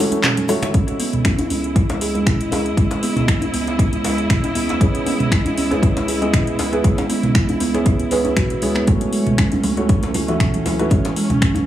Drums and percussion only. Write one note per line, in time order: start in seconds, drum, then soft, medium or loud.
0.11 closed hi-hat medium
0.11 djembe tone medium
0.11 shaker soft
0.23 finger snap loud
0.23 clap loud
0.23 mid tom medium
0.23 muted conga soft
0.23 shaker soft
0.37 closed hi-hat soft
0.37 high conga medium
0.48 open hi-hat medium
0.48 muted conga medium
0.48 shaker medium
0.62 finger snap medium
0.62 closed hi-hat medium
0.62 djembe slap medium
0.62 low conga loud
0.62 shaker medium
0.74 kick loud
0.74 closed hi-hat medium
0.88 closed hi-hat soft
0.88 djembe tone medium
1.00 open hi-hat medium
1.13 closed hi-hat soft
1.13 mid tom medium
1.25 finger snap loud
1.25 kick loud
1.25 closed hi-hat medium
1.25 djembe tone medium
1.39 closed hi-hat soft
1.39 djembe bass loud
1.50 open hi-hat medium
1.50 djembe tone medium
1.64 closed hi-hat soft
1.76 kick loud
1.76 closed hi-hat medium
1.90 closed hi-hat soft
1.90 djembe slap loud
1.90 djembe tone medium
2.01 open hi-hat medium
2.15 closed hi-hat soft
2.15 djembe tone medium
2.27 finger snap loud
2.27 kick loud
2.27 closed hi-hat medium
2.27 mid tom medium
2.41 closed hi-hat soft
2.52 open hi-hat medium
2.52 djembe slap loud
2.52 djembe tone medium
2.66 closed hi-hat soft
2.77 kick loud
2.77 closed hi-hat medium
2.77 djembe tone medium
2.91 closed hi-hat soft
2.91 djembe slap loud
3.03 open hi-hat medium
3.17 closed hi-hat soft
3.17 mid tom medium
3.17 djembe tone medium
3.28 finger snap loud
3.28 kick loud
3.28 closed hi-hat medium
3.41 closed hi-hat soft
3.41 djembe tone medium
3.41 djembe bass medium
3.54 open hi-hat medium
3.67 closed hi-hat soft
3.67 djembe slap medium
3.79 kick loud
3.79 closed hi-hat medium
3.79 djembe tone medium
3.93 closed hi-hat soft
4.04 open hi-hat medium
4.04 djembe slap loud
4.04 djembe tone medium
4.18 closed hi-hat soft
4.30 finger snap loud
4.30 kick loud
4.30 closed hi-hat medium
4.30 mid tom medium
4.44 closed hi-hat soft
4.44 djembe tone medium
4.55 open hi-hat medium
4.69 closed hi-hat soft
4.69 djembe slap medium
4.69 djembe tone medium
4.81 kick loud
4.81 closed hi-hat medium
4.95 closed hi-hat soft
5.06 open hi-hat medium
5.06 djembe tone medium
5.20 closed hi-hat soft
5.20 mid tom medium
5.31 finger snap loud
5.31 kick loud
5.31 closed hi-hat medium
5.31 djembe tone medium
5.45 closed hi-hat soft
5.45 djembe bass medium
5.57 open hi-hat medium
5.71 closed hi-hat soft
5.71 djembe tone loud
5.83 kick loud
5.83 closed hi-hat medium
5.97 closed hi-hat soft
5.97 djembe slap loud
5.97 djembe tone medium
6.08 open hi-hat medium
6.22 closed hi-hat soft
6.33 finger snap loud
6.33 kick loud
6.33 closed hi-hat medium
6.33 mid tom medium
6.33 djembe tone medium
6.47 closed hi-hat soft
6.58 open hi-hat medium
6.58 djembe slap medium
6.58 djembe tone medium
6.73 closed hi-hat soft
6.84 kick loud
6.84 closed hi-hat medium
6.98 closed hi-hat soft
6.98 djembe slap loud
6.98 djembe tone medium
7.10 open hi-hat medium
7.23 closed hi-hat soft
7.23 mid tom medium
7.23 djembe tone medium
7.35 finger snap loud
7.35 kick loud
7.35 closed hi-hat medium
7.49 closed hi-hat soft
7.49 djembe bass medium
7.60 open hi-hat medium
7.60 djembe tone medium
7.74 closed hi-hat soft
7.74 djembe slap medium
7.86 kick loud
7.86 closed hi-hat medium
7.86 djembe tone medium
8.00 closed hi-hat soft
8.11 open hi-hat medium
8.11 djembe slap medium
8.25 closed hi-hat soft
8.25 djembe tone loud
8.37 finger snap loud
8.37 kick loud
8.37 closed hi-hat medium
8.37 mid tom medium
8.50 closed hi-hat soft
8.50 djembe tone medium
8.62 open hi-hat medium
8.75 finger snap medium
8.75 closed hi-hat soft
8.75 djembe slap medium
8.87 kick loud
8.87 closed hi-hat medium
8.87 high conga loud
8.87 low conga medium
9.01 closed hi-hat soft
9.01 muted conga soft
9.01 djembe tone medium
9.13 open hi-hat medium
9.27 closed hi-hat soft
9.27 mid tom medium
9.27 muted conga soft
9.38 finger snap loud
9.38 kick loud
9.38 closed hi-hat medium
9.38 djembe tone medium
9.52 closed hi-hat soft
9.52 muted conga soft
9.52 high conga medium
9.52 djembe bass medium
9.63 open hi-hat medium
9.63 high conga medium
9.63 djembe tone medium
9.77 closed hi-hat soft
9.77 muted conga soft
9.89 kick loud
9.89 closed hi-hat medium
10.03 closed hi-hat soft
10.03 djembe slap medium
10.03 djembe tone medium
10.14 open hi-hat medium
10.14 muted conga medium
10.14 high conga medium
10.14 low conga medium
10.28 closed hi-hat soft
10.28 djembe tone medium
10.40 finger snap loud
10.40 kick loud
10.40 closed hi-hat medium
10.40 mid tom medium
10.40 muted conga soft
10.40 low conga medium
10.54 closed hi-hat soft
10.54 high conga medium
10.66 open hi-hat medium
10.66 djembe slap medium
10.66 muted conga medium
10.66 djembe tone medium
10.79 closed hi-hat soft
10.90 kick loud
10.90 closed hi-hat medium
10.90 high conga medium
10.90 djembe tone medium
10.90 low conga medium
11.05 closed hi-hat soft
11.05 muted conga medium
11.05 djembe slap medium
11.16 open hi-hat medium
11.30 closed hi-hat soft
11.30 mid tom loud
11.30 muted conga soft
11.30 djembe tone medium
11.42 finger snap loud
11.42 kick loud
11.42 closed hi-hat medium
11.55 closed hi-hat soft
11.55 muted conga medium
11.55 high conga medium
11.55 djembe tone medium
11.55 djembe bass medium